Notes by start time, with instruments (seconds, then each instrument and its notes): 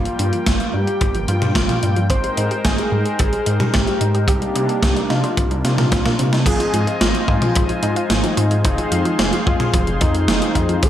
Already playing: analog synth pad G3 A#3 G5, analog synth lead F4
0.05 synth arpeggio sound F3, closed hi-hat
0.19 detuned saw bass G2, synth arpeggio sound D4, closed hi-hat
0.33 synth arpeggio sound F3, closed hi-hat
0.46 detuned saw bass G1, kick, snare, closed hi-hat
0.60 synth arpeggio sound F3, closed hi-hat
0.74 detuned saw bass G2, synth arpeggio sound D4, analog synth lead G4
0.87 synth arpeggio sound F4, closed hi-hat
1.01 detuned saw bass G1, synth arpeggio sound F3, kick, closed hi-hat
1.15 synth arpeggio sound F3, closed hi-hat
1.28 detuned saw bass G2, synth arpeggio sound F3, analog synth lead F4, closed hi-hat
1.42 synth arpeggio sound G3, closed hi-hat, mid tom
1.55 detuned saw bass G1, synth arpeggio sound F3, kick, snare, closed hi-hat
1.69 synth arpeggio sound F3, closed hi-hat, mid tom
1.83 detuned saw bass G2, synth arpeggio sound D4, closed hi-hat
1.96 detuned saw bass G2, synth arpeggio sound F3, closed hi-hat
2.10 detuned saw bass G#1, analog synth pad G#3 D#4 A#4 C5, synth arpeggio sound C4, analog synth lead C5, kick, closed hi-hat
2.24 synth arpeggio sound G3, closed hi-hat
2.37 detuned saw bass G#2, synth arpeggio sound D#4, closed hi-hat
2.51 synth arpeggio sound G4, closed hi-hat
2.65 detuned saw bass G#1, synth arpeggio sound G3, analog synth lead G#4, kick, snare, closed hi-hat
2.78 synth arpeggio sound G3, closed hi-hat
2.92 detuned saw bass G#2, synth arpeggio sound G3
3.05 synth arpeggio sound G#3, closed hi-hat
3.19 detuned saw bass G#1, synth arpeggio sound G3, kick, closed hi-hat
3.33 synth arpeggio sound G3, closed hi-hat
3.46 detuned saw bass G#2, synth arpeggio sound D#4, closed hi-hat
3.60 synth arpeggio sound G3, closed hi-hat, mid tom
3.73 detuned saw bass G#1, synth arpeggio sound C4, analog synth lead G4, kick, snare, closed hi-hat
3.87 synth arpeggio sound G3, closed hi-hat
4.01 detuned saw bass G#2, synth arpeggio sound D#4, closed hi-hat
4.15 detuned saw bass G#2, synth arpeggio sound G4, closed hi-hat
4.28 detuned saw bass C2, analog synth pad C3 G3 A#3 D4, synth arpeggio sound G3, analog synth lead G4, kick, closed hi-hat
4.42 synth arpeggio sound G3, closed hi-hat
4.55 detuned saw bass C3, synth arpeggio sound G3, closed hi-hat
4.69 synth arpeggio sound A#3, closed hi-hat
4.83 detuned saw bass C2, synth arpeggio sound G3, kick, snare, closed hi-hat
4.96 synth arpeggio sound G3, closed hi-hat
5.10 detuned saw bass C3, synth arpeggio sound D#4, analog synth lead F4, snare, closed hi-hat
5.24 synth arpeggio sound G3, closed hi-hat
5.37 detuned saw bass C2, synth arpeggio sound C4, kick, closed hi-hat
5.51 synth arpeggio sound G3, closed hi-hat
5.64 detuned saw bass C3, synth arpeggio sound G3, analog synth lead F4, snare, closed hi-hat
5.78 synth arpeggio sound A#3, snare, closed hi-hat, mid tom
5.92 detuned saw bass C2, synth arpeggio sound C4, kick, snare, closed hi-hat
6.05 synth arpeggio sound A#3, snare, closed hi-hat, mid tom
6.19 detuned saw bass C3, synth arpeggio sound C4, closed hi-hat
6.33 detuned saw bass C3, synth arpeggio sound D#4, snare, closed hi-hat
6.46 detuned saw bass G#1, synth arpeggio sound F3, analog polysynth F3 G#3 C4 D#4 F4, analog synth pad F4 C5 D#5 G#5, analog synth lead G#4, kick, closed hi-hat, crash
6.60 synth arpeggio sound F3, closed hi-hat
6.74 detuned saw bass G#2, synth arpeggio sound F3, closed hi-hat
6.87 analog polysynth F3 G#3 C4 D#4 F4, synth arpeggio sound G#3, closed hi-hat
7.01 detuned saw bass G#1, synth arpeggio sound F3, analog synth lead F4, snare, closed hi-hat
7.15 synth arpeggio sound F3, closed hi-hat
7.28 detuned saw bass G#2, analog polysynth F3 G#3 C4 D#4 F4, synth arpeggio sound D#4, kick
7.42 synth arpeggio sound F3, closed hi-hat, mid tom
7.55 detuned saw bass G#1, synth arpeggio sound C4, kick, closed hi-hat
7.69 synth arpeggio sound F3, closed hi-hat
7.83 detuned saw bass G#2, synth arpeggio sound D#4, closed hi-hat
7.96 synth arpeggio sound F4, closed hi-hat
8.10 detuned saw bass G#1, synth arpeggio sound F3, analog synth lead D#4, snare, closed hi-hat
8.24 synth arpeggio sound F3, closed hi-hat
8.37 detuned saw bass G#2, synth arpeggio sound F3, closed hi-hat
8.51 detuned saw bass G#2, synth arpeggio sound G#3, closed hi-hat
8.64 detuned saw bass F1, synth arpeggio sound F3, analog polysynth F3 G#3 C4 F4 G#4, analog synth lead D#4, analog synth pad G#4 C5 F5 C6, kick, closed hi-hat
8.78 synth arpeggio sound F3, closed hi-hat
8.92 detuned saw bass F2, synth arpeggio sound F4, closed hi-hat
9.05 synth arpeggio sound F3, analog polysynth F3 G#3 C4 F4 G#4, closed hi-hat
9.19 detuned saw bass F1, synth arpeggio sound C4, snare, closed hi-hat
9.33 synth arpeggio sound F3, closed hi-hat
9.46 detuned saw bass F2, analog polysynth F3 G#3 C4 F4 G#4, analog synth lead F4, synth arpeggio sound F4, kick
9.60 synth arpeggio sound G#4, closed hi-hat, mid tom
9.74 detuned saw bass F1, synth arpeggio sound F3, kick, closed hi-hat
9.87 synth arpeggio sound F3, closed hi-hat
10.01 detuned saw bass F2, synth arpeggio sound F3, analog synth lead D#4, kick, closed hi-hat
10.15 synth arpeggio sound G#3, closed hi-hat
10.28 detuned saw bass F1, synth arpeggio sound F3, snare, closed hi-hat
10.42 synth arpeggio sound F3, closed hi-hat
10.55 detuned saw bass F2, synth arpeggio sound F4, kick, closed hi-hat
10.69 detuned saw bass F2, synth arpeggio sound F3, closed hi-hat
10.83 detuned saw bass C2, analog polysynth G3 A#3 C4 D#4 G4, synth arpeggio sound C4, analog synth pad G4 D#5 A#5, analog synth lead A#4, kick, closed hi-hat